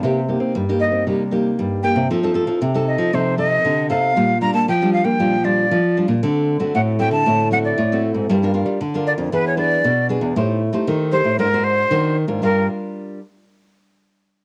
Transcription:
<<
  \new Staff \with { instrumentName = "Flute" } { \time 4/4 \key g \minor \tempo 4 = 116 r4. ees''8 r4. g''8 | r4. ees''8 c''8 ees''4 f''8~ | f''8 bes''16 a''16 g''8 f''16 g''8. d''4 r8 | r4 fis''8 g''16 a''8. fis''16 d''8. r8 |
r4. d''8 b'16 cis''16 d''4 r8 | r4. c''8 bes'8 c''4 r8 | bes'8 r2. r8 | }
  \new Staff \with { instrumentName = "Nylon-string guitar" } { \time 4/4 \key g \minor << { c4 g,4 c4 g,4 | f4 c4 f4 c4 | bes,4 f4 bes,4 f4 | d4 a,4 d4 a,4 |
g4 d4 e4 b,4 | a4 a4 aes4 ees4 | <g d' f' bes'>8 r2. r8 | } \\ { <bes ees' g'>16 r16 <bes ees' g'>8. <bes ees' g'>8. <bes ees' g'>16 r16 <bes ees' g'>4 <bes ees' g'>16 r16 | <c' ees' a'>16 <c' ees' a'>16 <c' ees' a'>8. <c' ees' a'>8. <c' ees' a'>8 <c' ees' a'>8. r16 <c' ees' a'>8 | <g d' f'>16 r16 <g d' f'>8 r16 <g d' f'>8. <g d' f'>16 r16 <g d' f'>8. r16 <g d' f'>16 r16 | <a c' fis'>8. <a c' fis'>8. <a c' fis'>16 r16 <a c' fis'>16 r16 <a c' fis'>8 r16 <a c' fis'>8. |
<d' f' bes'>16 <d' f' bes'>16 <d' f' bes'>8 r16 <d' f' bes'>8. <d' gis' b'>8 <d' gis' b'>8. r16 <d' gis' b'>8 | <ees' g' c''>8 r16 <ees' g' c''>8. <ees' g' c''>16 r16 <d' ges' c''>16 <d' ges' c''>8. <d' ges' c''>8 r16 <d' f' bes'>16~ | <d' f' bes'>8. r2. r16 | } >> }
  \new Staff \with { instrumentName = "Nylon-string guitar" } { \clef bass \time 4/4 \key g \minor c8. c'16 g8. c'16 g4 g8. c16 | f8. f16 c8. f16 c4 d8 c8 | bes,8. bes16 f8. bes16 f4 f8. bes,16 | d8. d16 a,8. d16 a,4 a,8. aes,16 |
g,8. g16 d8. f,16 e,4 b,8. e,16 | a,8. a16 ees8. a,16 aes,4 ees8. aes,16 | g,8 r2. r8 | }
>>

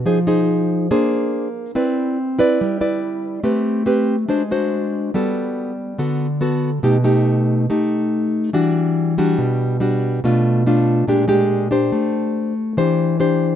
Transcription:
\new Staff \with { instrumentName = "Nylon-string guitar" } { \time 4/4 \key e \minor \tempo 4 = 142 << { <ees' aes' c''>8 <ees' aes' c''>4. <d' gis' bis'>4. r8 | <e' b' d''>4 r8 <e' b' d''>4 <e' b' d''>4. | <c' g' b'>4 <c' g' b'>8 r8 <d' fis' bis'>8 <d' fis' bis'>4. | <b fis' a'>4. r8 <b fis' a'>8 r8 <b fis' a'>8 r8 |
<a dis' g'>8 <a dis' g'>4. <a dis' g'>2 | <g d' fis'>4. <g d' fis'>4. <g d' fis'>4 | <a d' f'>4 <a d' f'>4 <gis d' g'>8 <gis d' g'>4 <d' g' bis'>8~ | <d' g' bis'>4. r8 <d' g' c''>4 <d' g' c''>4 | } \\ { f2 ais2 | c'2 g2 | a2 gis2 | g2 d2 |
b,2 r2 | e2 b,2 | b,2 ais,2 | a2 e2 | } >> }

